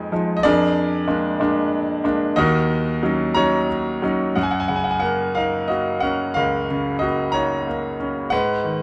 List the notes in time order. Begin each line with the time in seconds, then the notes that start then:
Already playing: F2 F3 G#3 D#4 G#4 B4 D#5 G#5
0.12 F3 G#3 D#4
0.37 D#5
0.43 F2 D4 G#4 A#4 D5
1.08 G#3 A#3 D4
1.40 G#3 A#3 D4
2.04 G#3 A#3 D4
2.36 D#2 D#4 F#4 A#4 D#5
3.03 F#3 C#4 D#4
3.35 F#3 C#4 D#4 C#5 A#5
4.02 F#3 C#4 D#4
4.35 F#2 F#5
4.43 G#5
4.51 F#5
4.60 G#5
4.68 C#3 F#5
4.76 G#5
4.84 F#5
4.91 G#5
5.00 A#3 A#4 F#5
5.35 D#4 A#4 F5
5.68 A#3 F#4 D#5
6.00 C#4 A#4 F#5
6.34 C#2 A#4 F5
6.71 C#3
6.99 A#3 F#4 D#5
7.32 D#4 C#5 A#5
7.67 A#3
8.00 C#4
8.30 G#2 B4 F#5
8.64 D#3